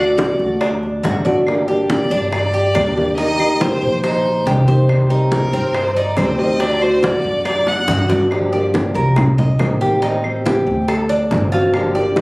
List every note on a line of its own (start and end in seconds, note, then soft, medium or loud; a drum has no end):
0.00 0.34 D2 medium
0.00 0.61 A3 medium
0.00 0.17 D4 medium
0.00 0.62 D4 medium
0.00 0.61 F#4 medium
0.00 0.61 D5 loud
0.18 0.60 F#4 medium
0.18 high bongo medium
0.18 high conga loud
0.39 1.00 D2 medium
0.39 high bongo soft
0.39 high conga soft
0.61 1.03 D4 medium
0.61 muted steel-string acoustic guitar stroke medium
0.61 high bongo medium
0.61 high conga soft
0.61 claves medium
0.83 high bongo soft
0.83 high conga soft
1.03 2.05 G1 loud
1.03 1.25 D3 soft
1.03 1.25 A3 soft
1.03 1.25 D4 medium
1.03 1.25 F#4 medium
1.03 1.24 F#4 soft
1.03 high bongo medium
1.03 low bongo medium
1.03 high conga medium
1.25 1.47 A3 medium
1.25 1.46 D4 medium
1.25 1.46 F#4 medium
1.25 1.67 D5 medium
1.25 high bongo soft
1.25 high conga medium
1.46 1.67 D3 medium
1.46 1.68 G3 medium
1.46 1.68 A#3 medium
1.46 1.67 D4 medium
1.46 1.67 G4 medium
1.46 high bongo medium
1.46 high conga soft
1.46 claves medium
1.68 2.33 G3 soft
1.68 2.33 A#3 medium
1.68 2.32 D4 medium
1.68 2.34 G4 medium
1.68 2.10 G4 medium
1.68 high bongo soft
1.68 high conga soft
1.90 2.31 D5 loud
1.90 high bongo medium
1.90 high conga medium
2.10 2.71 G2 medium
2.10 2.53 D4 medium
2.10 high bongo soft
2.10 high conga soft
2.32 3.15 D5 loud
2.32 muted steel-string acoustic guitar stroke medium
2.32 high bongo medium
2.32 high conga soft
2.32 claves medium
2.54 2.75 G4 medium
2.54 high bongo soft
2.54 high conga soft
2.74 3.76 D#2 medium
2.74 2.96 G3 soft
2.74 2.96 A#3 medium
2.74 3.17 D4 medium
2.74 2.96 D4 medium
2.74 2.94 G4 medium
2.74 high bongo medium
2.74 low bongo medium
2.74 high conga medium
2.74 claves medium
2.96 3.17 G3 medium
2.96 3.17 A#3 medium
2.96 3.17 D4 medium
2.96 3.17 G4 medium
2.96 high conga medium
3.18 3.39 D#3 medium
3.18 3.39 A#3 medium
3.18 3.60 D#4 medium
3.18 3.39 D#4 medium
3.18 3.37 G4 medium
3.18 3.63 D#5 loud
3.18 high bongo medium
3.18 high conga soft
3.39 4.03 A#3 medium
3.39 4.03 D#4 medium
3.39 4.04 G4 medium
3.39 high conga soft
3.39 claves medium
3.61 4.03 G4 medium
3.61 4.04 C5 loud
3.61 high bongo medium
3.61 high conga medium
3.82 4.43 A#1 medium
3.82 high bongo soft
3.82 high conga soft
4.03 4.46 D#4 medium
4.03 4.64 C5 medium
4.03 muted steel-string acoustic guitar stroke medium
4.03 high bongo medium
4.03 high conga soft
4.03 claves medium
4.25 high bongo soft
4.25 high conga soft
4.45 5.47 C2 medium
4.45 4.67 D#3 soft
4.45 4.67 A#3 medium
4.45 4.67 D#4 soft
4.45 4.68 G4 medium
4.45 4.66 G4 medium
4.45 high bongo medium
4.45 low bongo medium
4.45 high conga medium
4.67 4.89 A#3 medium
4.67 4.89 D#4 medium
4.67 4.88 G4 medium
4.67 5.10 C5 medium
4.67 high bongo soft
4.67 high conga medium
4.88 5.09 C3 medium
4.88 5.10 D#3 medium
4.88 5.09 G3 medium
4.88 5.08 C4 medium
4.88 5.08 G4 medium
4.88 high bongo medium
4.88 high conga soft
4.88 claves medium
5.09 5.74 D#3 medium
5.09 5.74 G3 medium
5.09 5.74 C4 medium
5.09 5.52 D#4 medium
5.09 5.73 G4 medium
5.09 high bongo soft
5.09 high conga soft
5.32 5.77 A#4 medium
5.32 high bongo medium
5.32 high conga medium
5.53 6.13 G2 medium
5.53 5.95 C4 medium
5.53 high bongo soft
5.53 high conga soft
5.74 5.96 C5 loud
5.74 muted steel-string acoustic guitar stroke medium
5.74 high bongo medium
5.74 high conga soft
5.74 claves medium
5.96 6.17 D#4 medium
5.96 6.20 D5 medium
5.96 high bongo soft
5.96 high conga soft
6.17 7.18 D2 medium
6.17 6.38 D#3 soft
6.17 6.38 G3 medium
6.17 6.59 C4 medium
6.17 6.38 C4 medium
6.17 6.38 G4 medium
6.17 6.41 C5 medium
6.17 high bongo medium
6.17 low bongo medium
6.17 high conga medium
6.17 claves medium
6.39 6.59 D#3 medium
6.39 6.60 G3 medium
6.39 6.60 C4 medium
6.39 6.60 G4 medium
6.39 6.62 D#5 loud
6.60 6.81 D3 medium
6.60 6.81 A3 medium
6.60 7.02 D4 medium
6.60 6.82 D4 medium
6.60 6.80 F#4 medium
6.60 6.83 D5 loud
6.60 high bongo medium
6.60 high conga soft
6.81 7.45 A3 medium
6.81 7.45 D4 medium
6.81 7.45 F#4 medium
6.81 7.05 C5 loud
6.81 high conga soft
6.81 claves medium
7.03 7.44 F#4 medium
7.03 7.46 D5 loud
7.03 high bongo medium
7.03 high conga loud
7.24 7.84 F#2 medium
7.24 high bongo soft
7.24 high conga soft
7.45 7.87 D4 medium
7.45 7.70 D5 loud
7.45 muted steel-string acoustic guitar stroke medium
7.45 high bongo medium
7.45 high conga soft
7.45 claves medium
7.67 8.11 F#5 loud
7.67 high bongo loud
7.67 high conga soft
7.88 8.89 G2 medium
7.88 8.09 D3 soft
7.88 8.09 A3 soft
7.88 8.09 D4 soft
7.88 8.09 F#4 medium
7.88 8.08 F#4 medium
7.88 low bongo loud
7.88 high conga medium
8.09 8.31 A3 medium
8.09 8.31 D4 medium
8.09 8.30 F#4 medium
8.09 8.31 D5 medium
8.09 low bongo loud
8.09 high conga medium
8.30 8.51 D3 medium
8.30 8.52 F3 medium
8.30 8.52 A#3 medium
8.30 8.52 D4 medium
8.30 8.52 G4 medium
8.30 high bongo medium
8.30 high conga soft
8.30 claves medium
8.53 9.16 F3 medium
8.53 9.16 A#3 medium
8.53 9.16 D4 medium
8.53 9.16 G4 medium
8.53 8.94 D5 medium
8.53 high bongo soft
8.53 high conga soft
8.74 high bongo medium
8.74 high conga loud
8.94 9.55 C2 medium
8.94 9.37 A#4 medium
8.94 high bongo soft
8.94 high conga soft
9.16 muted steel-string acoustic guitar stroke medium
9.16 high bongo medium
9.16 high conga soft
9.16 low conga medium
9.16 claves medium
9.38 9.80 D#5 medium
9.38 high bongo soft
9.38 high conga soft
9.38 low conga medium
9.58 10.60 A1 medium
9.58 9.80 D#3 soft
9.58 9.80 A#3 medium
9.58 9.80 C4 medium
9.58 9.79 G4 soft
9.58 high bongo medium
9.58 low bongo medium
9.58 high conga loud
9.58 claves medium
9.81 10.01 D#3 medium
9.81 10.02 A#3 medium
9.81 10.02 C4 medium
9.81 10.01 G4 medium
9.81 10.02 G4 medium
9.81 high conga medium
10.02 10.23 D#3 medium
10.02 10.23 G3 medium
10.02 10.22 C4 medium
10.02 10.44 D#4 medium
10.02 high bongo medium
10.02 high conga soft
10.24 10.88 G3 medium
10.24 10.87 C4 medium
10.24 high conga soft
10.24 claves medium
10.46 10.87 G4 medium
10.46 high bongo medium
10.46 high conga loud
10.67 11.27 D2 medium
10.67 high bongo soft
10.67 high conga soft
10.88 11.09 A4 medium
10.88 muted steel-string acoustic guitar stroke medium
10.88 high bongo medium
10.88 high conga soft
10.88 claves medium
11.09 11.51 D4 medium
11.09 high bongo soft
11.09 high conga soft
11.31 12.21 G1 loud
11.31 11.52 D3 medium
11.31 11.52 A3 medium
11.31 11.53 C4 soft
11.31 11.52 F#4 soft
11.31 high bongo medium
11.31 low bongo medium
11.31 high conga loud
11.52 11.74 A3 medium
11.52 11.74 C4 medium
11.52 11.94 F4 medium
11.52 11.73 F#4 medium
11.52 high conga medium
11.74 11.95 D3 medium
11.74 11.95 F3 medium
11.74 11.95 A#3 medium
11.74 11.95 D4 medium
11.74 11.94 G4 medium
11.74 high bongo medium
11.74 high conga soft
11.74 claves medium
11.95 12.21 F3 medium
11.95 12.21 A#3 medium
11.95 12.21 D4 medium
11.95 12.21 G4 medium
11.95 12.21 D5 medium
11.95 high bongo soft
11.95 high conga soft
12.16 high bongo medium
12.16 high conga medium